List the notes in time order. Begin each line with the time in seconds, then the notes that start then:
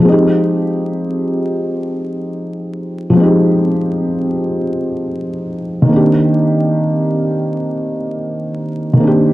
0.00 F3 G#3
0.05 C4 D#4
0.12 G4
3.10 F3 G#3
3.17 C4 D#4
3.23 G4
5.82 D#3 A#3
5.89 C4 D4
5.96 G4
8.94 D#3 A#3
9.00 C4 D4
9.07 G4